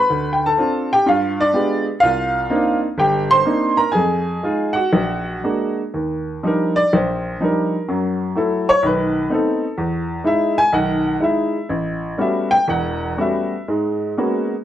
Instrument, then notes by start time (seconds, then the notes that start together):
upright piano
Already playing: B4 B5
0.10 D2
0.33 G5
0.46 A4 A5
0.58 C4 D4 F4
0.93 G4 G5
1.06 G2 F5
1.10 F4
1.41 D4 D5
1.54 G#3 B3 F4 G4
2.00 C2 F4 F5
2.50 A#3 C4 D4 D#4
2.98 G1 G4 G5
3.31 C5 C6
3.45 A#3 C4 D4 D#4
3.77 A#4 A#5
3.92 F2 G#4 G#5
4.43 G#3 D#4 F4
4.73 F#4 F#5
4.93 A#1
5.44 G#3 A#3 D4 F#4
5.94 D#2
6.43 F3 G3 D4 D#4 A#4
6.76 D5
6.93 A#1 C5
7.40 F3 G3 D4 D#4 A#4
7.88 F#2 F#3
8.35 F#3 A3 E4 A4
8.69 C#5
8.83 B1 D#3 B4
9.30 A3 B3 C4 D#4
9.34 A4
9.78 E2
10.24 G#3 D#4 E4 E5
10.58 G#5
10.72 B1 D#3 F#5
11.20 G#3 D#4 E4 E5
11.69 A1
12.18 G3 A3 B3 C#4 F#4 E5
12.51 G5
12.68 E1 E2 F#5
13.17 G3 A3 B3 C#4 F#4 E5
13.68 G#2 G#3
14.17 G#3 A#3 B3 C#4 F#4